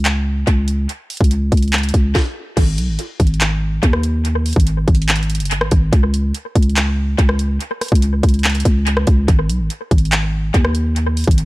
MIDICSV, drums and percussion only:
0, 0, Header, 1, 2, 480
1, 0, Start_track
1, 0, Key_signature, 5, "minor"
1, 0, Tempo, 419580
1, 1018, Time_signature, 4, 2, 24, 8
1, 13099, End_track
2, 0, Start_track
2, 0, Title_t, "Drums"
2, 57, Note_on_c, 9, 42, 89
2, 58, Note_on_c, 9, 39, 122
2, 171, Note_off_c, 9, 42, 0
2, 172, Note_off_c, 9, 39, 0
2, 539, Note_on_c, 9, 36, 97
2, 543, Note_on_c, 9, 42, 76
2, 653, Note_off_c, 9, 36, 0
2, 657, Note_off_c, 9, 42, 0
2, 775, Note_on_c, 9, 42, 81
2, 889, Note_off_c, 9, 42, 0
2, 1020, Note_on_c, 9, 42, 82
2, 1135, Note_off_c, 9, 42, 0
2, 1259, Note_on_c, 9, 42, 70
2, 1261, Note_on_c, 9, 46, 86
2, 1339, Note_off_c, 9, 42, 0
2, 1339, Note_on_c, 9, 42, 67
2, 1376, Note_off_c, 9, 46, 0
2, 1379, Note_on_c, 9, 36, 102
2, 1419, Note_off_c, 9, 42, 0
2, 1419, Note_on_c, 9, 42, 76
2, 1493, Note_off_c, 9, 36, 0
2, 1498, Note_off_c, 9, 42, 0
2, 1498, Note_on_c, 9, 42, 79
2, 1612, Note_off_c, 9, 42, 0
2, 1738, Note_on_c, 9, 36, 93
2, 1739, Note_on_c, 9, 42, 69
2, 1799, Note_off_c, 9, 42, 0
2, 1799, Note_on_c, 9, 42, 57
2, 1853, Note_off_c, 9, 36, 0
2, 1859, Note_off_c, 9, 42, 0
2, 1859, Note_on_c, 9, 42, 50
2, 1919, Note_off_c, 9, 42, 0
2, 1919, Note_on_c, 9, 42, 39
2, 1978, Note_on_c, 9, 39, 116
2, 1979, Note_off_c, 9, 42, 0
2, 1979, Note_on_c, 9, 42, 49
2, 2039, Note_off_c, 9, 42, 0
2, 2039, Note_on_c, 9, 42, 62
2, 2092, Note_off_c, 9, 39, 0
2, 2099, Note_off_c, 9, 42, 0
2, 2099, Note_on_c, 9, 42, 74
2, 2159, Note_off_c, 9, 42, 0
2, 2159, Note_on_c, 9, 42, 84
2, 2218, Note_on_c, 9, 36, 88
2, 2219, Note_off_c, 9, 42, 0
2, 2219, Note_on_c, 9, 42, 86
2, 2333, Note_off_c, 9, 36, 0
2, 2334, Note_off_c, 9, 42, 0
2, 2459, Note_on_c, 9, 36, 107
2, 2459, Note_on_c, 9, 38, 93
2, 2573, Note_off_c, 9, 36, 0
2, 2573, Note_off_c, 9, 38, 0
2, 2939, Note_on_c, 9, 36, 115
2, 2939, Note_on_c, 9, 49, 107
2, 2940, Note_on_c, 9, 42, 83
2, 3053, Note_off_c, 9, 36, 0
2, 3053, Note_off_c, 9, 49, 0
2, 3055, Note_off_c, 9, 42, 0
2, 3181, Note_on_c, 9, 42, 84
2, 3295, Note_off_c, 9, 42, 0
2, 3418, Note_on_c, 9, 42, 82
2, 3532, Note_off_c, 9, 42, 0
2, 3658, Note_on_c, 9, 36, 92
2, 3659, Note_on_c, 9, 42, 71
2, 3739, Note_off_c, 9, 42, 0
2, 3739, Note_on_c, 9, 42, 56
2, 3773, Note_off_c, 9, 36, 0
2, 3819, Note_off_c, 9, 42, 0
2, 3819, Note_on_c, 9, 42, 42
2, 3897, Note_off_c, 9, 42, 0
2, 3897, Note_on_c, 9, 42, 94
2, 3898, Note_on_c, 9, 39, 123
2, 4011, Note_off_c, 9, 42, 0
2, 4012, Note_off_c, 9, 39, 0
2, 4379, Note_on_c, 9, 36, 104
2, 4383, Note_on_c, 9, 42, 80
2, 4493, Note_off_c, 9, 36, 0
2, 4497, Note_off_c, 9, 42, 0
2, 4499, Note_on_c, 9, 37, 109
2, 4613, Note_off_c, 9, 37, 0
2, 4615, Note_on_c, 9, 42, 82
2, 4729, Note_off_c, 9, 42, 0
2, 4860, Note_on_c, 9, 42, 77
2, 4975, Note_off_c, 9, 42, 0
2, 5099, Note_on_c, 9, 42, 71
2, 5101, Note_on_c, 9, 46, 92
2, 5179, Note_off_c, 9, 42, 0
2, 5179, Note_on_c, 9, 42, 71
2, 5216, Note_off_c, 9, 46, 0
2, 5219, Note_on_c, 9, 36, 98
2, 5260, Note_off_c, 9, 42, 0
2, 5260, Note_on_c, 9, 42, 76
2, 5334, Note_off_c, 9, 36, 0
2, 5339, Note_off_c, 9, 42, 0
2, 5339, Note_on_c, 9, 42, 81
2, 5453, Note_off_c, 9, 42, 0
2, 5578, Note_on_c, 9, 36, 96
2, 5579, Note_on_c, 9, 42, 44
2, 5659, Note_off_c, 9, 42, 0
2, 5659, Note_on_c, 9, 42, 54
2, 5693, Note_off_c, 9, 36, 0
2, 5739, Note_off_c, 9, 42, 0
2, 5739, Note_on_c, 9, 42, 71
2, 5819, Note_off_c, 9, 42, 0
2, 5819, Note_on_c, 9, 39, 126
2, 5819, Note_on_c, 9, 42, 85
2, 5899, Note_off_c, 9, 42, 0
2, 5899, Note_on_c, 9, 42, 68
2, 5933, Note_off_c, 9, 39, 0
2, 5980, Note_off_c, 9, 42, 0
2, 5980, Note_on_c, 9, 42, 49
2, 6059, Note_off_c, 9, 42, 0
2, 6059, Note_on_c, 9, 42, 74
2, 6119, Note_off_c, 9, 42, 0
2, 6119, Note_on_c, 9, 42, 79
2, 6179, Note_off_c, 9, 42, 0
2, 6179, Note_on_c, 9, 42, 75
2, 6240, Note_off_c, 9, 42, 0
2, 6240, Note_on_c, 9, 42, 76
2, 6304, Note_off_c, 9, 42, 0
2, 6304, Note_on_c, 9, 42, 85
2, 6418, Note_off_c, 9, 42, 0
2, 6419, Note_on_c, 9, 37, 107
2, 6534, Note_off_c, 9, 37, 0
2, 6536, Note_on_c, 9, 42, 82
2, 6540, Note_on_c, 9, 36, 104
2, 6650, Note_off_c, 9, 42, 0
2, 6655, Note_off_c, 9, 36, 0
2, 6779, Note_on_c, 9, 36, 115
2, 6780, Note_on_c, 9, 42, 79
2, 6894, Note_off_c, 9, 36, 0
2, 6895, Note_off_c, 9, 42, 0
2, 7022, Note_on_c, 9, 42, 88
2, 7136, Note_off_c, 9, 42, 0
2, 7258, Note_on_c, 9, 42, 84
2, 7373, Note_off_c, 9, 42, 0
2, 7498, Note_on_c, 9, 36, 94
2, 7499, Note_on_c, 9, 42, 72
2, 7579, Note_off_c, 9, 42, 0
2, 7579, Note_on_c, 9, 42, 57
2, 7613, Note_off_c, 9, 36, 0
2, 7660, Note_off_c, 9, 42, 0
2, 7660, Note_on_c, 9, 42, 41
2, 7737, Note_off_c, 9, 42, 0
2, 7737, Note_on_c, 9, 42, 93
2, 7738, Note_on_c, 9, 39, 124
2, 7852, Note_off_c, 9, 42, 0
2, 7853, Note_off_c, 9, 39, 0
2, 8219, Note_on_c, 9, 36, 102
2, 8223, Note_on_c, 9, 42, 79
2, 8333, Note_off_c, 9, 36, 0
2, 8337, Note_off_c, 9, 42, 0
2, 8339, Note_on_c, 9, 37, 109
2, 8453, Note_off_c, 9, 37, 0
2, 8456, Note_on_c, 9, 42, 84
2, 8570, Note_off_c, 9, 42, 0
2, 8700, Note_on_c, 9, 42, 81
2, 8815, Note_off_c, 9, 42, 0
2, 8939, Note_on_c, 9, 37, 71
2, 8939, Note_on_c, 9, 42, 72
2, 8942, Note_on_c, 9, 46, 92
2, 9019, Note_off_c, 9, 42, 0
2, 9019, Note_on_c, 9, 42, 70
2, 9053, Note_off_c, 9, 37, 0
2, 9056, Note_off_c, 9, 46, 0
2, 9059, Note_on_c, 9, 36, 102
2, 9099, Note_off_c, 9, 42, 0
2, 9099, Note_on_c, 9, 42, 76
2, 9173, Note_off_c, 9, 36, 0
2, 9179, Note_off_c, 9, 42, 0
2, 9179, Note_on_c, 9, 42, 78
2, 9293, Note_off_c, 9, 42, 0
2, 9418, Note_on_c, 9, 36, 95
2, 9419, Note_on_c, 9, 42, 69
2, 9479, Note_off_c, 9, 42, 0
2, 9479, Note_on_c, 9, 42, 60
2, 9533, Note_off_c, 9, 36, 0
2, 9539, Note_off_c, 9, 42, 0
2, 9539, Note_on_c, 9, 42, 50
2, 9599, Note_off_c, 9, 42, 0
2, 9599, Note_on_c, 9, 42, 40
2, 9658, Note_on_c, 9, 39, 126
2, 9659, Note_off_c, 9, 42, 0
2, 9659, Note_on_c, 9, 42, 51
2, 9719, Note_off_c, 9, 42, 0
2, 9719, Note_on_c, 9, 42, 63
2, 9773, Note_off_c, 9, 39, 0
2, 9779, Note_off_c, 9, 42, 0
2, 9779, Note_on_c, 9, 42, 73
2, 9839, Note_off_c, 9, 42, 0
2, 9839, Note_on_c, 9, 42, 85
2, 9899, Note_off_c, 9, 42, 0
2, 9899, Note_on_c, 9, 36, 93
2, 9899, Note_on_c, 9, 42, 86
2, 10013, Note_off_c, 9, 36, 0
2, 10014, Note_off_c, 9, 42, 0
2, 10143, Note_on_c, 9, 42, 87
2, 10258, Note_off_c, 9, 42, 0
2, 10259, Note_on_c, 9, 37, 105
2, 10373, Note_off_c, 9, 37, 0
2, 10376, Note_on_c, 9, 42, 83
2, 10380, Note_on_c, 9, 36, 102
2, 10490, Note_off_c, 9, 42, 0
2, 10494, Note_off_c, 9, 36, 0
2, 10619, Note_on_c, 9, 36, 112
2, 10621, Note_on_c, 9, 42, 80
2, 10733, Note_off_c, 9, 36, 0
2, 10735, Note_off_c, 9, 42, 0
2, 10862, Note_on_c, 9, 42, 86
2, 10976, Note_off_c, 9, 42, 0
2, 11099, Note_on_c, 9, 42, 79
2, 11213, Note_off_c, 9, 42, 0
2, 11339, Note_on_c, 9, 36, 94
2, 11340, Note_on_c, 9, 42, 69
2, 11420, Note_off_c, 9, 42, 0
2, 11420, Note_on_c, 9, 42, 55
2, 11453, Note_off_c, 9, 36, 0
2, 11499, Note_off_c, 9, 42, 0
2, 11499, Note_on_c, 9, 42, 41
2, 11577, Note_off_c, 9, 42, 0
2, 11577, Note_on_c, 9, 42, 90
2, 11578, Note_on_c, 9, 39, 121
2, 11691, Note_off_c, 9, 42, 0
2, 11693, Note_off_c, 9, 39, 0
2, 12059, Note_on_c, 9, 36, 102
2, 12063, Note_on_c, 9, 42, 79
2, 12173, Note_off_c, 9, 36, 0
2, 12177, Note_off_c, 9, 42, 0
2, 12179, Note_on_c, 9, 37, 107
2, 12293, Note_off_c, 9, 37, 0
2, 12295, Note_on_c, 9, 42, 86
2, 12409, Note_off_c, 9, 42, 0
2, 12540, Note_on_c, 9, 42, 80
2, 12654, Note_off_c, 9, 42, 0
2, 12779, Note_on_c, 9, 42, 71
2, 12781, Note_on_c, 9, 46, 91
2, 12859, Note_off_c, 9, 42, 0
2, 12859, Note_on_c, 9, 42, 69
2, 12895, Note_off_c, 9, 46, 0
2, 12899, Note_on_c, 9, 36, 103
2, 12939, Note_off_c, 9, 42, 0
2, 12939, Note_on_c, 9, 42, 78
2, 13013, Note_off_c, 9, 36, 0
2, 13018, Note_off_c, 9, 42, 0
2, 13018, Note_on_c, 9, 42, 78
2, 13099, Note_off_c, 9, 42, 0
2, 13099, End_track
0, 0, End_of_file